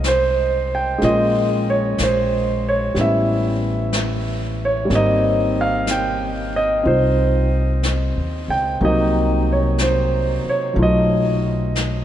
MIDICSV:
0, 0, Header, 1, 5, 480
1, 0, Start_track
1, 0, Tempo, 975610
1, 495, Time_signature, 4, 2, 24, 8
1, 5927, End_track
2, 0, Start_track
2, 0, Title_t, "Grand piano"
2, 0, Program_c, 0, 0
2, 0, Control_c, 0, 64, 127
2, 0, Note_on_c, 0, 56, 38
2, 0, Note_on_c, 0, 60, 39
2, 0, Note_on_c, 0, 63, 36
2, 0, Note_on_c, 0, 65, 31
2, 0, Note_on_c, 0, 67, 45
2, 0, Note_on_c, 0, 68, 37
2, 0, Note_on_c, 0, 75, 71
2, 0, Note_on_c, 0, 77, 76
2, 38, Note_on_c, 0, 72, 79
2, 360, Note_off_c, 0, 72, 0
2, 368, Note_on_c, 0, 79, 74
2, 476, Note_off_c, 0, 56, 0
2, 484, Note_on_c, 0, 56, 47
2, 490, Note_on_c, 0, 58, 42
2, 498, Note_off_c, 0, 60, 0
2, 498, Note_off_c, 0, 63, 0
2, 498, Note_on_c, 0, 61, 39
2, 499, Note_off_c, 0, 65, 0
2, 500, Note_off_c, 0, 67, 0
2, 502, Control_c, 0, 64, 0
2, 503, Note_off_c, 0, 75, 0
2, 506, Note_off_c, 0, 68, 0
2, 507, Note_off_c, 0, 77, 0
2, 507, Note_on_c, 0, 65, 49
2, 514, Note_off_c, 0, 79, 0
2, 514, Note_on_c, 0, 75, 76
2, 593, Control_c, 0, 64, 127
2, 836, Note_off_c, 0, 75, 0
2, 836, Note_on_c, 0, 73, 71
2, 988, Note_off_c, 0, 73, 0
2, 1000, Note_on_c, 0, 72, 70
2, 1316, Note_off_c, 0, 72, 0
2, 1322, Note_on_c, 0, 73, 70
2, 1448, Note_off_c, 0, 56, 0
2, 1448, Note_on_c, 0, 55, 40
2, 1451, Note_off_c, 0, 58, 0
2, 1455, Note_off_c, 0, 61, 0
2, 1455, Note_on_c, 0, 59, 37
2, 1459, Note_off_c, 0, 65, 0
2, 1460, Control_c, 0, 64, 0
2, 1464, Note_on_c, 0, 61, 38
2, 1472, Note_off_c, 0, 73, 0
2, 1472, Note_on_c, 0, 64, 44
2, 1480, Note_on_c, 0, 76, 76
2, 1555, Control_c, 0, 64, 127
2, 2245, Note_off_c, 0, 76, 0
2, 2288, Note_on_c, 0, 73, 73
2, 2379, Note_off_c, 0, 55, 0
2, 2386, Note_on_c, 0, 55, 46
2, 2401, Note_on_c, 0, 58, 40
2, 2408, Note_off_c, 0, 59, 0
2, 2412, Note_off_c, 0, 61, 0
2, 2414, Control_c, 0, 64, 0
2, 2416, Note_off_c, 0, 64, 0
2, 2422, Note_on_c, 0, 60, 42
2, 2429, Note_off_c, 0, 73, 0
2, 2437, Note_on_c, 0, 75, 80
2, 2439, Note_on_c, 0, 63, 50
2, 2511, Control_c, 0, 64, 127
2, 2753, Note_off_c, 0, 75, 0
2, 2760, Note_on_c, 0, 77, 73
2, 2891, Note_off_c, 0, 77, 0
2, 2908, Note_on_c, 0, 79, 84
2, 3200, Note_off_c, 0, 79, 0
2, 3229, Note_on_c, 0, 75, 76
2, 3355, Note_off_c, 0, 60, 0
2, 3362, Note_off_c, 0, 63, 0
2, 3362, Note_on_c, 0, 60, 37
2, 3369, Note_on_c, 0, 63, 35
2, 3374, Note_on_c, 0, 65, 38
2, 3380, Note_off_c, 0, 75, 0
2, 3381, Note_on_c, 0, 72, 69
2, 4184, Note_on_c, 0, 79, 76
2, 4201, Note_off_c, 0, 72, 0
2, 4315, Note_off_c, 0, 55, 0
2, 4323, Note_off_c, 0, 58, 0
2, 4324, Note_off_c, 0, 60, 0
2, 4328, Note_off_c, 0, 63, 0
2, 4330, Note_off_c, 0, 65, 0
2, 4333, Control_c, 0, 64, 0
2, 4333, Note_on_c, 0, 54, 51
2, 4334, Note_on_c, 0, 58, 45
2, 4338, Note_off_c, 0, 79, 0
2, 4338, Note_on_c, 0, 48, 46
2, 4341, Note_on_c, 0, 63, 57
2, 4353, Note_on_c, 0, 75, 72
2, 4407, Control_c, 0, 64, 127
2, 4673, Note_off_c, 0, 75, 0
2, 4686, Note_on_c, 0, 73, 63
2, 4829, Note_off_c, 0, 73, 0
2, 4833, Note_on_c, 0, 72, 69
2, 5121, Note_off_c, 0, 72, 0
2, 5163, Note_on_c, 0, 73, 67
2, 5274, Note_off_c, 0, 54, 0
2, 5282, Note_on_c, 0, 54, 36
2, 5289, Note_on_c, 0, 57, 37
2, 5291, Note_off_c, 0, 63, 0
2, 5293, Note_off_c, 0, 58, 0
2, 5295, Note_off_c, 0, 48, 0
2, 5296, Note_off_c, 0, 73, 0
2, 5296, Control_c, 0, 64, 0
2, 5298, Note_on_c, 0, 63, 34
2, 5306, Note_on_c, 0, 65, 41
2, 5326, Note_on_c, 0, 75, 76
2, 5381, Control_c, 0, 64, 127
2, 5927, Note_off_c, 0, 54, 0
2, 5927, Note_off_c, 0, 57, 0
2, 5927, Note_off_c, 0, 63, 0
2, 5927, Note_off_c, 0, 65, 0
2, 5927, Note_off_c, 0, 75, 0
2, 5927, End_track
3, 0, Start_track
3, 0, Title_t, "Upright bass"
3, 0, Program_c, 1, 32
3, 0, Note_on_c, 1, 36, 71
3, 478, Note_off_c, 1, 36, 0
3, 501, Note_on_c, 1, 34, 69
3, 957, Note_off_c, 1, 34, 0
3, 980, Note_on_c, 1, 34, 62
3, 1437, Note_off_c, 1, 34, 0
3, 1451, Note_on_c, 1, 33, 72
3, 2386, Note_off_c, 1, 33, 0
3, 2411, Note_on_c, 1, 32, 78
3, 3347, Note_off_c, 1, 32, 0
3, 3372, Note_on_c, 1, 36, 75
3, 3990, Note_off_c, 1, 36, 0
3, 4017, Note_on_c, 1, 39, 48
3, 4160, Note_off_c, 1, 39, 0
3, 4174, Note_on_c, 1, 37, 55
3, 4319, Note_off_c, 1, 37, 0
3, 4333, Note_on_c, 1, 36, 71
3, 5115, Note_off_c, 1, 36, 0
3, 5294, Note_on_c, 1, 35, 73
3, 5927, Note_off_c, 1, 35, 0
3, 5927, End_track
4, 0, Start_track
4, 0, Title_t, "Muted upright bass strokes"
4, 5138, Note_on_c, 9, 29, 29
4, 5187, Note_off_c, 9, 29, 0
4, 5927, End_track
5, 0, Start_track
5, 0, Title_t, "Drums"
5, 18, Note_on_c, 9, 25, 31
5, 18, Note_on_c, 9, 38, 39
5, 18, Note_on_c, 9, 44, 44
5, 68, Note_off_c, 9, 38, 0
5, 68, Note_off_c, 9, 44, 0
5, 500, Note_off_c, 9, 25, 0
5, 500, Note_on_c, 9, 25, 31
5, 500, Note_on_c, 9, 38, 23
5, 549, Note_off_c, 9, 38, 0
5, 976, Note_off_c, 9, 25, 0
5, 976, Note_on_c, 9, 25, 30
5, 976, Note_on_c, 9, 38, 35
5, 976, Note_on_c, 9, 44, 41
5, 1025, Note_off_c, 9, 38, 0
5, 1025, Note_off_c, 9, 44, 0
5, 1455, Note_off_c, 9, 25, 0
5, 1455, Note_on_c, 9, 25, 30
5, 1455, Note_on_c, 9, 38, 24
5, 1504, Note_off_c, 9, 38, 0
5, 1932, Note_off_c, 9, 25, 0
5, 1932, Note_on_c, 9, 25, 35
5, 1932, Note_on_c, 9, 38, 41
5, 1932, Note_on_c, 9, 44, 44
5, 1981, Note_off_c, 9, 38, 0
5, 1981, Note_off_c, 9, 44, 0
5, 2412, Note_off_c, 9, 25, 0
5, 2412, Note_on_c, 9, 25, 35
5, 2412, Note_on_c, 9, 38, 26
5, 2461, Note_off_c, 9, 38, 0
5, 2888, Note_off_c, 9, 25, 0
5, 2888, Note_on_c, 9, 25, 28
5, 2888, Note_on_c, 9, 38, 36
5, 2888, Note_on_c, 9, 44, 48
5, 2937, Note_off_c, 9, 38, 0
5, 2937, Note_off_c, 9, 44, 0
5, 3374, Note_off_c, 9, 25, 0
5, 3374, Note_on_c, 9, 25, 36
5, 3854, Note_off_c, 9, 25, 0
5, 3854, Note_on_c, 9, 25, 33
5, 3854, Note_on_c, 9, 38, 38
5, 3854, Note_on_c, 9, 44, 51
5, 3903, Note_off_c, 9, 38, 0
5, 3903, Note_off_c, 9, 44, 0
5, 4337, Note_off_c, 9, 25, 0
5, 4337, Note_on_c, 9, 25, 31
5, 4813, Note_off_c, 9, 25, 0
5, 4813, Note_on_c, 9, 25, 27
5, 4813, Note_on_c, 9, 38, 34
5, 4813, Note_on_c, 9, 44, 48
5, 4862, Note_off_c, 9, 38, 0
5, 4862, Note_off_c, 9, 44, 0
5, 5294, Note_off_c, 9, 25, 0
5, 5294, Note_on_c, 9, 25, 30
5, 5783, Note_off_c, 9, 25, 0
5, 5783, Note_on_c, 9, 25, 36
5, 5783, Note_on_c, 9, 38, 38
5, 5783, Note_on_c, 9, 44, 42
5, 5832, Note_off_c, 9, 38, 0
5, 5832, Note_off_c, 9, 44, 0
5, 5927, Note_off_c, 9, 25, 0
5, 5927, End_track
0, 0, End_of_file